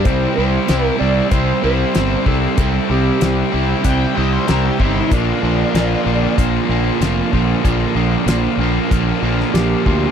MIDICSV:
0, 0, Header, 1, 6, 480
1, 0, Start_track
1, 0, Tempo, 632911
1, 39, Time_signature, 4, 2, 24, 8
1, 7670, End_track
2, 0, Start_track
2, 0, Title_t, "Electric slide guitar"
2, 0, Program_c, 0, 29
2, 34, Note_on_c, 0, 72, 90
2, 262, Note_off_c, 0, 72, 0
2, 271, Note_on_c, 0, 72, 92
2, 650, Note_off_c, 0, 72, 0
2, 650, Note_on_c, 0, 70, 92
2, 753, Note_off_c, 0, 70, 0
2, 756, Note_on_c, 0, 74, 88
2, 979, Note_off_c, 0, 74, 0
2, 996, Note_on_c, 0, 72, 88
2, 1241, Note_off_c, 0, 72, 0
2, 1250, Note_on_c, 0, 72, 92
2, 1730, Note_on_c, 0, 69, 76
2, 1737, Note_off_c, 0, 72, 0
2, 1947, Note_off_c, 0, 69, 0
2, 1971, Note_on_c, 0, 69, 85
2, 2209, Note_on_c, 0, 67, 74
2, 2210, Note_off_c, 0, 69, 0
2, 2892, Note_off_c, 0, 67, 0
2, 7233, Note_on_c, 0, 67, 69
2, 7670, Note_off_c, 0, 67, 0
2, 7670, End_track
3, 0, Start_track
3, 0, Title_t, "Lead electric guitar"
3, 0, Program_c, 1, 29
3, 2920, Note_on_c, 1, 79, 91
3, 3151, Note_off_c, 1, 79, 0
3, 3165, Note_on_c, 1, 75, 71
3, 3284, Note_off_c, 1, 75, 0
3, 3284, Note_on_c, 1, 72, 80
3, 3395, Note_on_c, 1, 70, 79
3, 3397, Note_off_c, 1, 72, 0
3, 3512, Note_off_c, 1, 70, 0
3, 3530, Note_on_c, 1, 67, 75
3, 3639, Note_off_c, 1, 67, 0
3, 3640, Note_on_c, 1, 63, 82
3, 3871, Note_off_c, 1, 63, 0
3, 3883, Note_on_c, 1, 62, 76
3, 4811, Note_off_c, 1, 62, 0
3, 7670, End_track
4, 0, Start_track
4, 0, Title_t, "Distorted electric guitar"
4, 0, Program_c, 2, 30
4, 38, Note_on_c, 2, 48, 85
4, 47, Note_on_c, 2, 55, 90
4, 48, Note_on_c, 2, 60, 94
4, 51, Note_on_c, 2, 64, 85
4, 278, Note_off_c, 2, 48, 0
4, 281, Note_on_c, 2, 48, 75
4, 282, Note_off_c, 2, 55, 0
4, 285, Note_off_c, 2, 60, 0
4, 285, Note_on_c, 2, 55, 71
4, 288, Note_off_c, 2, 64, 0
4, 288, Note_on_c, 2, 60, 78
4, 291, Note_on_c, 2, 64, 82
4, 515, Note_off_c, 2, 48, 0
4, 518, Note_on_c, 2, 48, 78
4, 522, Note_off_c, 2, 55, 0
4, 523, Note_off_c, 2, 60, 0
4, 525, Note_on_c, 2, 55, 82
4, 526, Note_on_c, 2, 60, 74
4, 529, Note_off_c, 2, 64, 0
4, 532, Note_on_c, 2, 64, 86
4, 749, Note_off_c, 2, 48, 0
4, 752, Note_on_c, 2, 48, 74
4, 754, Note_off_c, 2, 55, 0
4, 757, Note_off_c, 2, 60, 0
4, 757, Note_on_c, 2, 55, 78
4, 760, Note_on_c, 2, 60, 83
4, 764, Note_off_c, 2, 64, 0
4, 767, Note_on_c, 2, 64, 90
4, 982, Note_off_c, 2, 48, 0
4, 989, Note_off_c, 2, 60, 0
4, 991, Note_on_c, 2, 48, 87
4, 992, Note_off_c, 2, 64, 0
4, 994, Note_off_c, 2, 55, 0
4, 997, Note_on_c, 2, 55, 82
4, 998, Note_on_c, 2, 60, 91
4, 1001, Note_on_c, 2, 64, 83
4, 1223, Note_off_c, 2, 48, 0
4, 1232, Note_off_c, 2, 55, 0
4, 1232, Note_on_c, 2, 48, 75
4, 1234, Note_off_c, 2, 60, 0
4, 1235, Note_off_c, 2, 64, 0
4, 1235, Note_on_c, 2, 55, 74
4, 1243, Note_on_c, 2, 60, 78
4, 1245, Note_on_c, 2, 64, 90
4, 1465, Note_off_c, 2, 48, 0
4, 1472, Note_off_c, 2, 60, 0
4, 1474, Note_off_c, 2, 55, 0
4, 1474, Note_on_c, 2, 48, 79
4, 1477, Note_on_c, 2, 55, 78
4, 1478, Note_off_c, 2, 64, 0
4, 1481, Note_on_c, 2, 60, 91
4, 1487, Note_on_c, 2, 64, 88
4, 1701, Note_off_c, 2, 48, 0
4, 1708, Note_off_c, 2, 60, 0
4, 1709, Note_off_c, 2, 55, 0
4, 1710, Note_off_c, 2, 64, 0
4, 1710, Note_on_c, 2, 48, 86
4, 1712, Note_on_c, 2, 55, 94
4, 1717, Note_on_c, 2, 60, 91
4, 1720, Note_on_c, 2, 64, 87
4, 1940, Note_off_c, 2, 48, 0
4, 1949, Note_on_c, 2, 48, 86
4, 1950, Note_off_c, 2, 60, 0
4, 1952, Note_off_c, 2, 55, 0
4, 1953, Note_off_c, 2, 64, 0
4, 1955, Note_on_c, 2, 55, 88
4, 1959, Note_on_c, 2, 60, 95
4, 1962, Note_on_c, 2, 64, 97
4, 2181, Note_off_c, 2, 48, 0
4, 2188, Note_off_c, 2, 60, 0
4, 2190, Note_off_c, 2, 55, 0
4, 2190, Note_on_c, 2, 48, 79
4, 2193, Note_on_c, 2, 55, 75
4, 2195, Note_off_c, 2, 64, 0
4, 2197, Note_on_c, 2, 60, 80
4, 2204, Note_on_c, 2, 64, 78
4, 2421, Note_off_c, 2, 48, 0
4, 2429, Note_off_c, 2, 60, 0
4, 2430, Note_on_c, 2, 48, 77
4, 2433, Note_off_c, 2, 55, 0
4, 2434, Note_off_c, 2, 64, 0
4, 2436, Note_on_c, 2, 55, 80
4, 2438, Note_on_c, 2, 60, 84
4, 2444, Note_on_c, 2, 64, 83
4, 2663, Note_off_c, 2, 48, 0
4, 2672, Note_off_c, 2, 60, 0
4, 2672, Note_on_c, 2, 48, 77
4, 2677, Note_off_c, 2, 55, 0
4, 2677, Note_off_c, 2, 64, 0
4, 2680, Note_on_c, 2, 55, 79
4, 2681, Note_on_c, 2, 60, 77
4, 2686, Note_on_c, 2, 64, 89
4, 2904, Note_off_c, 2, 48, 0
4, 2913, Note_off_c, 2, 55, 0
4, 2913, Note_off_c, 2, 60, 0
4, 2913, Note_on_c, 2, 48, 88
4, 2915, Note_off_c, 2, 64, 0
4, 2916, Note_on_c, 2, 55, 81
4, 2922, Note_on_c, 2, 60, 89
4, 2924, Note_on_c, 2, 64, 99
4, 3147, Note_off_c, 2, 48, 0
4, 3155, Note_off_c, 2, 60, 0
4, 3156, Note_on_c, 2, 48, 81
4, 3158, Note_off_c, 2, 55, 0
4, 3161, Note_off_c, 2, 64, 0
4, 3161, Note_on_c, 2, 55, 72
4, 3164, Note_on_c, 2, 60, 85
4, 3170, Note_on_c, 2, 64, 93
4, 3391, Note_off_c, 2, 48, 0
4, 3399, Note_off_c, 2, 60, 0
4, 3401, Note_off_c, 2, 55, 0
4, 3401, Note_on_c, 2, 48, 86
4, 3402, Note_off_c, 2, 64, 0
4, 3404, Note_on_c, 2, 55, 86
4, 3408, Note_on_c, 2, 60, 98
4, 3411, Note_on_c, 2, 64, 93
4, 3629, Note_off_c, 2, 48, 0
4, 3638, Note_off_c, 2, 60, 0
4, 3638, Note_on_c, 2, 48, 78
4, 3639, Note_off_c, 2, 64, 0
4, 3640, Note_off_c, 2, 55, 0
4, 3643, Note_on_c, 2, 55, 87
4, 3648, Note_on_c, 2, 60, 98
4, 3649, Note_on_c, 2, 64, 102
4, 3863, Note_off_c, 2, 48, 0
4, 3867, Note_off_c, 2, 60, 0
4, 3868, Note_off_c, 2, 64, 0
4, 3877, Note_on_c, 2, 46, 83
4, 3881, Note_off_c, 2, 55, 0
4, 3883, Note_on_c, 2, 50, 90
4, 3884, Note_on_c, 2, 53, 96
4, 3889, Note_on_c, 2, 58, 94
4, 3895, Note_on_c, 2, 65, 96
4, 4114, Note_off_c, 2, 50, 0
4, 4115, Note_off_c, 2, 46, 0
4, 4118, Note_on_c, 2, 46, 75
4, 4123, Note_on_c, 2, 50, 78
4, 4124, Note_off_c, 2, 53, 0
4, 4126, Note_off_c, 2, 58, 0
4, 4127, Note_on_c, 2, 53, 79
4, 4129, Note_on_c, 2, 58, 83
4, 4130, Note_off_c, 2, 65, 0
4, 4133, Note_on_c, 2, 65, 83
4, 4345, Note_off_c, 2, 50, 0
4, 4350, Note_off_c, 2, 46, 0
4, 4353, Note_on_c, 2, 46, 81
4, 4355, Note_off_c, 2, 53, 0
4, 4355, Note_on_c, 2, 50, 75
4, 4358, Note_on_c, 2, 53, 90
4, 4359, Note_off_c, 2, 58, 0
4, 4362, Note_on_c, 2, 58, 89
4, 4364, Note_off_c, 2, 65, 0
4, 4367, Note_on_c, 2, 65, 97
4, 4590, Note_off_c, 2, 50, 0
4, 4592, Note_off_c, 2, 46, 0
4, 4596, Note_on_c, 2, 46, 76
4, 4598, Note_off_c, 2, 53, 0
4, 4599, Note_on_c, 2, 50, 77
4, 4601, Note_off_c, 2, 58, 0
4, 4601, Note_on_c, 2, 53, 80
4, 4604, Note_off_c, 2, 65, 0
4, 4604, Note_on_c, 2, 58, 78
4, 4607, Note_on_c, 2, 65, 86
4, 4819, Note_off_c, 2, 46, 0
4, 4825, Note_off_c, 2, 50, 0
4, 4827, Note_off_c, 2, 53, 0
4, 4828, Note_on_c, 2, 46, 82
4, 4832, Note_off_c, 2, 65, 0
4, 4833, Note_off_c, 2, 58, 0
4, 4834, Note_on_c, 2, 50, 78
4, 4836, Note_on_c, 2, 53, 89
4, 4841, Note_on_c, 2, 65, 92
4, 4843, Note_on_c, 2, 58, 89
4, 5057, Note_off_c, 2, 46, 0
4, 5061, Note_off_c, 2, 50, 0
4, 5064, Note_off_c, 2, 53, 0
4, 5066, Note_off_c, 2, 58, 0
4, 5066, Note_on_c, 2, 46, 78
4, 5070, Note_on_c, 2, 50, 78
4, 5071, Note_off_c, 2, 65, 0
4, 5073, Note_on_c, 2, 53, 81
4, 5075, Note_on_c, 2, 58, 86
4, 5081, Note_on_c, 2, 65, 80
4, 5302, Note_off_c, 2, 46, 0
4, 5305, Note_off_c, 2, 50, 0
4, 5309, Note_off_c, 2, 53, 0
4, 5311, Note_on_c, 2, 46, 81
4, 5314, Note_on_c, 2, 50, 76
4, 5315, Note_off_c, 2, 58, 0
4, 5316, Note_off_c, 2, 65, 0
4, 5318, Note_on_c, 2, 53, 90
4, 5324, Note_on_c, 2, 58, 94
4, 5325, Note_on_c, 2, 65, 94
4, 5540, Note_off_c, 2, 46, 0
4, 5543, Note_off_c, 2, 50, 0
4, 5548, Note_off_c, 2, 53, 0
4, 5549, Note_on_c, 2, 46, 84
4, 5551, Note_off_c, 2, 58, 0
4, 5552, Note_on_c, 2, 50, 95
4, 5556, Note_off_c, 2, 65, 0
4, 5557, Note_on_c, 2, 53, 92
4, 5560, Note_on_c, 2, 58, 86
4, 5565, Note_on_c, 2, 65, 99
4, 5780, Note_off_c, 2, 46, 0
4, 5786, Note_off_c, 2, 50, 0
4, 5789, Note_off_c, 2, 53, 0
4, 5790, Note_on_c, 2, 46, 85
4, 5792, Note_off_c, 2, 58, 0
4, 5795, Note_on_c, 2, 50, 90
4, 5797, Note_off_c, 2, 65, 0
4, 5798, Note_on_c, 2, 53, 88
4, 5801, Note_on_c, 2, 58, 84
4, 5806, Note_on_c, 2, 65, 85
4, 6019, Note_off_c, 2, 46, 0
4, 6026, Note_off_c, 2, 50, 0
4, 6027, Note_off_c, 2, 53, 0
4, 6028, Note_on_c, 2, 46, 74
4, 6032, Note_off_c, 2, 58, 0
4, 6032, Note_off_c, 2, 65, 0
4, 6035, Note_on_c, 2, 50, 81
4, 6036, Note_on_c, 2, 53, 78
4, 6041, Note_on_c, 2, 58, 87
4, 6041, Note_on_c, 2, 65, 82
4, 6258, Note_off_c, 2, 46, 0
4, 6264, Note_off_c, 2, 50, 0
4, 6267, Note_on_c, 2, 46, 74
4, 6269, Note_off_c, 2, 53, 0
4, 6271, Note_off_c, 2, 58, 0
4, 6273, Note_off_c, 2, 65, 0
4, 6273, Note_on_c, 2, 50, 72
4, 6278, Note_on_c, 2, 53, 77
4, 6280, Note_on_c, 2, 58, 81
4, 6282, Note_on_c, 2, 65, 88
4, 6504, Note_off_c, 2, 46, 0
4, 6508, Note_off_c, 2, 50, 0
4, 6512, Note_off_c, 2, 53, 0
4, 6513, Note_on_c, 2, 46, 76
4, 6517, Note_on_c, 2, 50, 79
4, 6518, Note_off_c, 2, 58, 0
4, 6519, Note_off_c, 2, 65, 0
4, 6521, Note_on_c, 2, 53, 81
4, 6527, Note_on_c, 2, 58, 78
4, 6528, Note_on_c, 2, 65, 82
4, 6745, Note_off_c, 2, 46, 0
4, 6751, Note_off_c, 2, 50, 0
4, 6754, Note_on_c, 2, 46, 85
4, 6755, Note_off_c, 2, 53, 0
4, 6760, Note_on_c, 2, 50, 91
4, 6761, Note_off_c, 2, 58, 0
4, 6763, Note_off_c, 2, 65, 0
4, 6764, Note_on_c, 2, 53, 82
4, 6770, Note_on_c, 2, 58, 96
4, 6773, Note_on_c, 2, 65, 101
4, 6980, Note_off_c, 2, 46, 0
4, 6985, Note_off_c, 2, 50, 0
4, 6985, Note_off_c, 2, 53, 0
4, 6989, Note_on_c, 2, 46, 70
4, 6993, Note_off_c, 2, 58, 0
4, 6994, Note_off_c, 2, 65, 0
4, 6994, Note_on_c, 2, 50, 79
4, 6995, Note_on_c, 2, 53, 80
4, 7002, Note_on_c, 2, 58, 85
4, 7003, Note_on_c, 2, 65, 85
4, 7219, Note_off_c, 2, 46, 0
4, 7223, Note_off_c, 2, 50, 0
4, 7228, Note_on_c, 2, 46, 79
4, 7229, Note_off_c, 2, 53, 0
4, 7232, Note_on_c, 2, 50, 86
4, 7233, Note_off_c, 2, 58, 0
4, 7237, Note_off_c, 2, 65, 0
4, 7238, Note_on_c, 2, 53, 93
4, 7242, Note_on_c, 2, 58, 83
4, 7246, Note_on_c, 2, 65, 90
4, 7464, Note_off_c, 2, 46, 0
4, 7468, Note_off_c, 2, 50, 0
4, 7469, Note_off_c, 2, 53, 0
4, 7473, Note_off_c, 2, 58, 0
4, 7473, Note_on_c, 2, 46, 87
4, 7476, Note_off_c, 2, 65, 0
4, 7477, Note_on_c, 2, 50, 92
4, 7478, Note_on_c, 2, 53, 81
4, 7482, Note_on_c, 2, 58, 86
4, 7485, Note_on_c, 2, 65, 94
4, 7670, Note_off_c, 2, 46, 0
4, 7670, Note_off_c, 2, 50, 0
4, 7670, Note_off_c, 2, 53, 0
4, 7670, Note_off_c, 2, 58, 0
4, 7670, Note_off_c, 2, 65, 0
4, 7670, End_track
5, 0, Start_track
5, 0, Title_t, "Fingered electric bass"
5, 0, Program_c, 3, 33
5, 46, Note_on_c, 3, 36, 81
5, 194, Note_off_c, 3, 36, 0
5, 287, Note_on_c, 3, 36, 75
5, 435, Note_off_c, 3, 36, 0
5, 526, Note_on_c, 3, 36, 83
5, 675, Note_off_c, 3, 36, 0
5, 764, Note_on_c, 3, 36, 85
5, 913, Note_off_c, 3, 36, 0
5, 997, Note_on_c, 3, 36, 77
5, 1148, Note_off_c, 3, 36, 0
5, 1243, Note_on_c, 3, 36, 81
5, 1392, Note_off_c, 3, 36, 0
5, 1484, Note_on_c, 3, 31, 83
5, 1633, Note_off_c, 3, 31, 0
5, 1718, Note_on_c, 3, 36, 78
5, 1869, Note_off_c, 3, 36, 0
5, 1958, Note_on_c, 3, 36, 84
5, 2109, Note_off_c, 3, 36, 0
5, 2196, Note_on_c, 3, 36, 79
5, 2347, Note_off_c, 3, 36, 0
5, 2440, Note_on_c, 3, 36, 84
5, 2591, Note_off_c, 3, 36, 0
5, 2684, Note_on_c, 3, 36, 78
5, 2833, Note_off_c, 3, 36, 0
5, 2917, Note_on_c, 3, 36, 84
5, 3068, Note_off_c, 3, 36, 0
5, 3166, Note_on_c, 3, 36, 83
5, 3314, Note_off_c, 3, 36, 0
5, 3411, Note_on_c, 3, 36, 89
5, 3557, Note_off_c, 3, 36, 0
5, 3641, Note_on_c, 3, 31, 78
5, 3791, Note_off_c, 3, 31, 0
5, 3882, Note_on_c, 3, 34, 84
5, 4031, Note_off_c, 3, 34, 0
5, 4118, Note_on_c, 3, 34, 83
5, 4269, Note_off_c, 3, 34, 0
5, 4355, Note_on_c, 3, 34, 87
5, 4507, Note_off_c, 3, 34, 0
5, 4596, Note_on_c, 3, 34, 84
5, 4748, Note_off_c, 3, 34, 0
5, 4838, Note_on_c, 3, 34, 80
5, 4989, Note_off_c, 3, 34, 0
5, 5075, Note_on_c, 3, 34, 79
5, 5226, Note_off_c, 3, 34, 0
5, 5313, Note_on_c, 3, 29, 83
5, 5465, Note_off_c, 3, 29, 0
5, 5560, Note_on_c, 3, 34, 75
5, 5710, Note_off_c, 3, 34, 0
5, 5800, Note_on_c, 3, 34, 88
5, 5950, Note_off_c, 3, 34, 0
5, 6029, Note_on_c, 3, 34, 82
5, 6182, Note_off_c, 3, 34, 0
5, 6265, Note_on_c, 3, 34, 83
5, 6420, Note_off_c, 3, 34, 0
5, 6504, Note_on_c, 3, 34, 84
5, 6659, Note_off_c, 3, 34, 0
5, 6761, Note_on_c, 3, 34, 79
5, 6910, Note_off_c, 3, 34, 0
5, 6995, Note_on_c, 3, 34, 84
5, 7146, Note_off_c, 3, 34, 0
5, 7236, Note_on_c, 3, 34, 81
5, 7387, Note_off_c, 3, 34, 0
5, 7476, Note_on_c, 3, 38, 73
5, 7627, Note_off_c, 3, 38, 0
5, 7670, End_track
6, 0, Start_track
6, 0, Title_t, "Drums"
6, 39, Note_on_c, 9, 42, 52
6, 42, Note_on_c, 9, 36, 100
6, 115, Note_off_c, 9, 42, 0
6, 118, Note_off_c, 9, 36, 0
6, 518, Note_on_c, 9, 42, 58
6, 525, Note_on_c, 9, 38, 107
6, 594, Note_off_c, 9, 42, 0
6, 601, Note_off_c, 9, 38, 0
6, 997, Note_on_c, 9, 42, 58
6, 999, Note_on_c, 9, 36, 99
6, 1072, Note_off_c, 9, 42, 0
6, 1075, Note_off_c, 9, 36, 0
6, 1476, Note_on_c, 9, 42, 56
6, 1483, Note_on_c, 9, 38, 104
6, 1552, Note_off_c, 9, 42, 0
6, 1559, Note_off_c, 9, 38, 0
6, 1716, Note_on_c, 9, 36, 78
6, 1792, Note_off_c, 9, 36, 0
6, 1954, Note_on_c, 9, 42, 58
6, 1956, Note_on_c, 9, 36, 101
6, 2029, Note_off_c, 9, 42, 0
6, 2032, Note_off_c, 9, 36, 0
6, 2436, Note_on_c, 9, 42, 61
6, 2443, Note_on_c, 9, 38, 101
6, 2512, Note_off_c, 9, 42, 0
6, 2518, Note_off_c, 9, 38, 0
6, 2915, Note_on_c, 9, 42, 61
6, 2918, Note_on_c, 9, 36, 97
6, 2991, Note_off_c, 9, 42, 0
6, 2993, Note_off_c, 9, 36, 0
6, 3398, Note_on_c, 9, 42, 54
6, 3405, Note_on_c, 9, 38, 99
6, 3474, Note_off_c, 9, 42, 0
6, 3481, Note_off_c, 9, 38, 0
6, 3639, Note_on_c, 9, 36, 76
6, 3714, Note_off_c, 9, 36, 0
6, 3879, Note_on_c, 9, 42, 53
6, 3880, Note_on_c, 9, 36, 101
6, 3955, Note_off_c, 9, 42, 0
6, 3956, Note_off_c, 9, 36, 0
6, 4361, Note_on_c, 9, 42, 54
6, 4368, Note_on_c, 9, 38, 101
6, 4437, Note_off_c, 9, 42, 0
6, 4444, Note_off_c, 9, 38, 0
6, 4840, Note_on_c, 9, 36, 110
6, 4842, Note_on_c, 9, 42, 60
6, 4915, Note_off_c, 9, 36, 0
6, 4918, Note_off_c, 9, 42, 0
6, 5321, Note_on_c, 9, 42, 53
6, 5328, Note_on_c, 9, 38, 99
6, 5397, Note_off_c, 9, 42, 0
6, 5404, Note_off_c, 9, 38, 0
6, 5561, Note_on_c, 9, 36, 79
6, 5636, Note_off_c, 9, 36, 0
6, 5800, Note_on_c, 9, 36, 97
6, 5803, Note_on_c, 9, 42, 54
6, 5876, Note_off_c, 9, 36, 0
6, 5879, Note_off_c, 9, 42, 0
6, 6278, Note_on_c, 9, 42, 63
6, 6285, Note_on_c, 9, 38, 108
6, 6354, Note_off_c, 9, 42, 0
6, 6361, Note_off_c, 9, 38, 0
6, 6760, Note_on_c, 9, 36, 100
6, 6762, Note_on_c, 9, 42, 59
6, 6836, Note_off_c, 9, 36, 0
6, 6838, Note_off_c, 9, 42, 0
6, 7130, Note_on_c, 9, 38, 29
6, 7206, Note_off_c, 9, 38, 0
6, 7242, Note_on_c, 9, 42, 63
6, 7249, Note_on_c, 9, 38, 103
6, 7318, Note_off_c, 9, 42, 0
6, 7325, Note_off_c, 9, 38, 0
6, 7479, Note_on_c, 9, 36, 78
6, 7555, Note_off_c, 9, 36, 0
6, 7670, End_track
0, 0, End_of_file